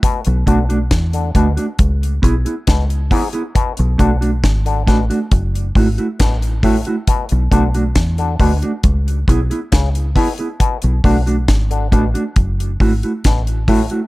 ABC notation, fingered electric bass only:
X:1
M:4/4
L:1/16
Q:1/4=68
K:Bdor
V:1 name="Fingered electric bass" clef=bass
z B,,, B,,,2 E,,2 D,, z C,,2 B,,, z C,,2 z2 | z B,,, B,,,2 G,,,2 A,,, z F,,,2 G,,, z A,,,3 z | z B,,, B,,,2 E,,2 D,, z C,,2 B,,, z C,,2 z2 | z B,,, B,,,2 G,,,2 A,,, z F,,,2 G,,, z A,,,3 z |]